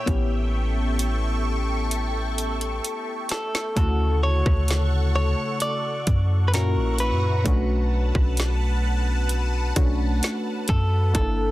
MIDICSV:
0, 0, Header, 1, 6, 480
1, 0, Start_track
1, 0, Key_signature, 2, "major"
1, 0, Tempo, 923077
1, 38, Time_signature, 4, 2, 24, 8
1, 5987, End_track
2, 0, Start_track
2, 0, Title_t, "Analog synth pad"
2, 0, Program_c, 0, 89
2, 0, Note_on_c, 0, 76, 78
2, 0, Note_on_c, 0, 79, 76
2, 35, Note_on_c, 0, 85, 89
2, 36, Note_on_c, 0, 69, 86
2, 1937, Note_off_c, 0, 69, 0
2, 1937, Note_off_c, 0, 76, 0
2, 1937, Note_off_c, 0, 79, 0
2, 1937, Note_off_c, 0, 85, 0
2, 1958, Note_on_c, 0, 69, 83
2, 1959, Note_on_c, 0, 78, 75
2, 1959, Note_on_c, 0, 85, 98
2, 3384, Note_off_c, 0, 69, 0
2, 3384, Note_off_c, 0, 78, 0
2, 3384, Note_off_c, 0, 85, 0
2, 3395, Note_on_c, 0, 78, 70
2, 3395, Note_on_c, 0, 85, 84
2, 3396, Note_on_c, 0, 76, 71
2, 3396, Note_on_c, 0, 82, 74
2, 3871, Note_off_c, 0, 78, 0
2, 3872, Note_off_c, 0, 76, 0
2, 3872, Note_off_c, 0, 82, 0
2, 3872, Note_off_c, 0, 85, 0
2, 3876, Note_on_c, 0, 81, 81
2, 3877, Note_on_c, 0, 71, 84
2, 3877, Note_on_c, 0, 78, 73
2, 5778, Note_off_c, 0, 71, 0
2, 5778, Note_off_c, 0, 78, 0
2, 5778, Note_off_c, 0, 81, 0
2, 5795, Note_on_c, 0, 79, 75
2, 5797, Note_on_c, 0, 58, 87
2, 5797, Note_on_c, 0, 76, 76
2, 5987, Note_off_c, 0, 58, 0
2, 5987, Note_off_c, 0, 76, 0
2, 5987, Note_off_c, 0, 79, 0
2, 5987, End_track
3, 0, Start_track
3, 0, Title_t, "Clean electric guitar"
3, 0, Program_c, 1, 27
3, 0, Note_on_c, 1, 73, 101
3, 741, Note_off_c, 1, 73, 0
3, 1723, Note_on_c, 1, 69, 88
3, 1956, Note_off_c, 1, 69, 0
3, 1962, Note_on_c, 1, 69, 95
3, 2199, Note_off_c, 1, 69, 0
3, 2202, Note_on_c, 1, 73, 105
3, 2675, Note_off_c, 1, 73, 0
3, 2681, Note_on_c, 1, 73, 100
3, 2919, Note_off_c, 1, 73, 0
3, 2921, Note_on_c, 1, 74, 105
3, 3368, Note_off_c, 1, 74, 0
3, 3370, Note_on_c, 1, 71, 65
3, 3399, Note_off_c, 1, 71, 0
3, 3401, Note_on_c, 1, 70, 95
3, 3639, Note_off_c, 1, 70, 0
3, 3641, Note_on_c, 1, 71, 95
3, 4578, Note_off_c, 1, 71, 0
3, 5562, Note_on_c, 1, 69, 92
3, 5795, Note_off_c, 1, 69, 0
3, 5801, Note_on_c, 1, 69, 100
3, 5987, Note_off_c, 1, 69, 0
3, 5987, End_track
4, 0, Start_track
4, 0, Title_t, "Synth keys"
4, 0, Program_c, 2, 88
4, 0, Control_c, 2, 64, 127
4, 32, Note_on_c, 2, 59, 71
4, 38, Note_on_c, 2, 61, 67
4, 43, Note_on_c, 2, 64, 63
4, 44, Control_c, 2, 64, 0
4, 49, Note_on_c, 2, 67, 77
4, 120, Control_c, 2, 64, 127
4, 1934, Note_off_c, 2, 59, 0
4, 1937, Note_off_c, 2, 61, 0
4, 1940, Note_off_c, 2, 64, 0
4, 1943, Note_off_c, 2, 67, 0
4, 1955, Note_on_c, 2, 57, 74
4, 1961, Note_on_c, 2, 49, 66
4, 1965, Control_c, 2, 64, 0
4, 1965, Note_on_c, 2, 64, 63
4, 1971, Note_on_c, 2, 66, 80
4, 2042, Control_c, 2, 64, 127
4, 3375, Note_off_c, 2, 57, 0
4, 3378, Note_off_c, 2, 49, 0
4, 3381, Note_off_c, 2, 64, 0
4, 3383, Note_off_c, 2, 66, 0
4, 3398, Note_on_c, 2, 46, 67
4, 3400, Note_on_c, 2, 61, 64
4, 3403, Note_on_c, 2, 64, 65
4, 3405, Control_c, 2, 64, 0
4, 3406, Note_on_c, 2, 66, 77
4, 3507, Control_c, 2, 64, 127
4, 3870, Note_off_c, 2, 61, 0
4, 3870, Note_on_c, 2, 57, 70
4, 3876, Note_on_c, 2, 61, 63
4, 3878, Note_off_c, 2, 46, 0
4, 3880, Note_off_c, 2, 64, 0
4, 3880, Note_off_c, 2, 66, 0
4, 3881, Note_on_c, 2, 62, 69
4, 3883, Control_c, 2, 64, 0
4, 3887, Note_on_c, 2, 66, 77
4, 3986, Control_c, 2, 64, 127
4, 5053, Note_off_c, 2, 57, 0
4, 5056, Note_off_c, 2, 61, 0
4, 5059, Note_off_c, 2, 62, 0
4, 5061, Note_off_c, 2, 66, 0
4, 5075, Note_on_c, 2, 57, 66
4, 5077, Note_on_c, 2, 61, 60
4, 5081, Note_on_c, 2, 62, 64
4, 5084, Note_on_c, 2, 66, 72
4, 5790, Note_off_c, 2, 62, 0
4, 5790, Note_on_c, 2, 58, 72
4, 5796, Note_off_c, 2, 57, 0
4, 5796, Note_on_c, 2, 62, 68
4, 5798, Note_off_c, 2, 61, 0
4, 5801, Note_off_c, 2, 66, 0
4, 5802, Note_on_c, 2, 64, 66
4, 5806, Control_c, 2, 64, 0
4, 5808, Note_on_c, 2, 69, 84
4, 5903, Control_c, 2, 64, 127
4, 5987, Note_off_c, 2, 58, 0
4, 5987, Note_off_c, 2, 62, 0
4, 5987, Note_off_c, 2, 64, 0
4, 5987, Note_off_c, 2, 69, 0
4, 5987, End_track
5, 0, Start_track
5, 0, Title_t, "808-style bass"
5, 0, Program_c, 3, 38
5, 38, Note_on_c, 3, 33, 109
5, 1457, Note_off_c, 3, 33, 0
5, 1958, Note_on_c, 3, 38, 114
5, 2303, Note_off_c, 3, 38, 0
5, 2319, Note_on_c, 3, 38, 107
5, 2779, Note_off_c, 3, 38, 0
5, 3156, Note_on_c, 3, 42, 112
5, 3516, Note_on_c, 3, 34, 96
5, 3524, Note_off_c, 3, 42, 0
5, 3697, Note_on_c, 3, 42, 104
5, 3705, Note_off_c, 3, 34, 0
5, 3868, Note_off_c, 3, 42, 0
5, 3876, Note_on_c, 3, 35, 121
5, 4223, Note_off_c, 3, 35, 0
5, 4238, Note_on_c, 3, 35, 106
5, 5057, Note_off_c, 3, 35, 0
5, 5077, Note_on_c, 3, 35, 98
5, 5308, Note_off_c, 3, 35, 0
5, 5558, Note_on_c, 3, 42, 114
5, 5788, Note_off_c, 3, 42, 0
5, 5796, Note_on_c, 3, 31, 114
5, 5987, Note_off_c, 3, 31, 0
5, 5987, End_track
6, 0, Start_track
6, 0, Title_t, "Drums"
6, 38, Note_on_c, 9, 36, 126
6, 40, Note_on_c, 9, 42, 82
6, 90, Note_off_c, 9, 36, 0
6, 92, Note_off_c, 9, 42, 0
6, 516, Note_on_c, 9, 42, 67
6, 568, Note_off_c, 9, 42, 0
6, 994, Note_on_c, 9, 42, 75
6, 1046, Note_off_c, 9, 42, 0
6, 1239, Note_on_c, 9, 42, 61
6, 1291, Note_off_c, 9, 42, 0
6, 1358, Note_on_c, 9, 42, 39
6, 1410, Note_off_c, 9, 42, 0
6, 1479, Note_on_c, 9, 42, 90
6, 1531, Note_off_c, 9, 42, 0
6, 1712, Note_on_c, 9, 42, 62
6, 1724, Note_on_c, 9, 38, 114
6, 1764, Note_off_c, 9, 42, 0
6, 1776, Note_off_c, 9, 38, 0
6, 1845, Note_on_c, 9, 38, 98
6, 1897, Note_off_c, 9, 38, 0
6, 1958, Note_on_c, 9, 36, 125
6, 1958, Note_on_c, 9, 42, 84
6, 2010, Note_off_c, 9, 36, 0
6, 2010, Note_off_c, 9, 42, 0
6, 2319, Note_on_c, 9, 36, 94
6, 2324, Note_on_c, 9, 37, 67
6, 2371, Note_off_c, 9, 36, 0
6, 2376, Note_off_c, 9, 37, 0
6, 2434, Note_on_c, 9, 42, 69
6, 2447, Note_on_c, 9, 38, 116
6, 2486, Note_off_c, 9, 42, 0
6, 2499, Note_off_c, 9, 38, 0
6, 2913, Note_on_c, 9, 42, 76
6, 2965, Note_off_c, 9, 42, 0
6, 3156, Note_on_c, 9, 42, 65
6, 3157, Note_on_c, 9, 36, 95
6, 3208, Note_off_c, 9, 42, 0
6, 3209, Note_off_c, 9, 36, 0
6, 3399, Note_on_c, 9, 42, 90
6, 3405, Note_on_c, 9, 38, 105
6, 3451, Note_off_c, 9, 42, 0
6, 3457, Note_off_c, 9, 38, 0
6, 3632, Note_on_c, 9, 42, 67
6, 3684, Note_off_c, 9, 42, 0
6, 3877, Note_on_c, 9, 36, 127
6, 3877, Note_on_c, 9, 42, 82
6, 3929, Note_off_c, 9, 36, 0
6, 3929, Note_off_c, 9, 42, 0
6, 4238, Note_on_c, 9, 36, 97
6, 4244, Note_on_c, 9, 37, 63
6, 4290, Note_off_c, 9, 36, 0
6, 4296, Note_off_c, 9, 37, 0
6, 4353, Note_on_c, 9, 42, 70
6, 4366, Note_on_c, 9, 38, 111
6, 4405, Note_off_c, 9, 42, 0
6, 4418, Note_off_c, 9, 38, 0
6, 4833, Note_on_c, 9, 42, 75
6, 4885, Note_off_c, 9, 42, 0
6, 5076, Note_on_c, 9, 42, 64
6, 5077, Note_on_c, 9, 36, 99
6, 5128, Note_off_c, 9, 42, 0
6, 5129, Note_off_c, 9, 36, 0
6, 5318, Note_on_c, 9, 42, 87
6, 5325, Note_on_c, 9, 38, 107
6, 5370, Note_off_c, 9, 42, 0
6, 5377, Note_off_c, 9, 38, 0
6, 5552, Note_on_c, 9, 42, 65
6, 5558, Note_on_c, 9, 36, 102
6, 5604, Note_off_c, 9, 42, 0
6, 5610, Note_off_c, 9, 36, 0
6, 5797, Note_on_c, 9, 36, 123
6, 5797, Note_on_c, 9, 42, 84
6, 5849, Note_off_c, 9, 36, 0
6, 5849, Note_off_c, 9, 42, 0
6, 5987, End_track
0, 0, End_of_file